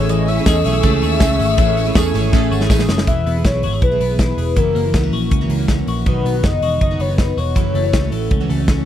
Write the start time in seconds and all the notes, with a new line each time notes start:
Already playing: A1 A3 C#4 E4 G#4 C#5 G#5 C#6 E6
0.09 E3 D#5, hi-hat pedal, ride, tambourine
0.28 C#4 E5, open hi-hat, tambourine
0.39 A3 C#4 E4 G#4
0.46 E2 A3 C#4 G#4 D#5, kick, snare, hi-hat pedal, ride, tambourine
0.64 B1 A3 C#4 E4 G#4 E5, open hi-hat, tambourine
0.83 C#2 A3 C#4 E4 G#4, kick, hi-hat pedal, ride, tambourine
1.02 D#2 G#4, open hi-hat, tambourine
1.12 C#4 E4 G#4
1.20 C#2 A3 C#4 G#4, kick, snare, hi-hat pedal, ride, tambourine
1.29 C#4 E4 G#4
1.39 G#1 F#4, open hi-hat, tambourine
1.49 G#4
1.58 A1 E3 A3 C#4 E4 G#4, kick, hi-hat pedal, ride, tambourine
1.77 C#4, open hi-hat, tambourine
1.86 A3 C#4 E4 G#4
1.95 E2 A3 C#4 G#4, kick, snare, hi-hat pedal, ride, tambourine
2.14 G#1 A3 C#4 E4 G#4, open hi-hat, tambourine
2.32 A1 A3 C#4 E4 G#4, kick, snare
2.51 G#1 F#4, tambourine
2.61 C#4 E4 G#4, snare
2.70 A1 A3 C#4 G#4, kick, snare, tambourine
2.79 C#4 E4 G#4, snare
2.88 F#1 G#4, snare, tambourine
2.98 snare
3.07 E1 E3 B3 E4 G#4 E5, kick, closed hi-hat
3.25 E1 B3, open hi-hat
3.36 B3 E4 G#4
3.44 B1 E4 C#5, kick, snare, closed hi-hat
3.54 B3 E4 G#4
3.63 G#1 F#4, open hi-hat
3.73 G#4
3.82 B1 E4 B4, kick, closed hi-hat
3.92 E3 B3 E4 G#4
4.00 B1 B3, open hi-hat
4.10 B3 E4 G#4
4.19 E4 B4, kick, snare, closed hi-hat
4.29 B3 E4 G#4
4.37 E1 G#4, open hi-hat
4.56 F#1 F#2 C#3 E3 A#3 E4 F#4 A#4, kick, closed hi-hat
4.75 F#1 A#3, open hi-hat
4.84 E3 A#3 E4 F#4
4.94 C#2 B3, kick, snare, closed hi-hat
5.03 E3 A#3 C#4 E4 F#4
5.12 A#1 F#4, open hi-hat
5.31 C#2 C#4, kick, closed hi-hat
5.41 F#2 C#3 E3 A#3 E4 F#4
5.49 C#2 A#3, open hi-hat
5.59 E3 A#3 E4 F#4
5.68 C#4, kick, snare, closed hi-hat
5.77 E3 A#3 E4 F#4
5.87 A#1 F#4, open hi-hat
6.06 B1 B2 D#3 F#3 B3 D#4 F#4 B4, kick, closed hi-hat
6.25 B1 B3, open hi-hat
6.35 B3 D#4 F#4
6.44 F#1 D#4 D#5, kick, snare, closed hi-hat
6.52 B3 D#4 F#4
6.61 E1 F#4, open hi-hat
6.81 F#1 D#4 D#5, kick, closed hi-hat
6.91 B2 F#3 B3 D#4 F#4
6.99 F#1 B3 C#5, open hi-hat
7.09 B3 D#4 F#4
7.18 D#4 B4, kick, snare, closed hi-hat
7.27 B3 D#4 F#4
7.37 E1 F#4 C#5, open hi-hat
7.55 F#1 F#2 C#3 E3 A3 C#4 F#4, kick, closed hi-hat
7.74 F#1 A3, open hi-hat
7.84 E3 A3 C#4 F#4
7.93 C#2 C#4, kick, snare, closed hi-hat
8.03 E3 A3 C#4 F#4
8.12 A1 A4, open hi-hat
8.31 C#2 C#4, kick, closed hi-hat
8.40 F#2 C#3 E3 A3 C#4 F#4
8.50 C#2 A3, open hi-hat
8.58 E3 A3 C#4 F#4
8.68 C#4, kick, snare, closed hi-hat
8.77 E3 A3 C#4 F#4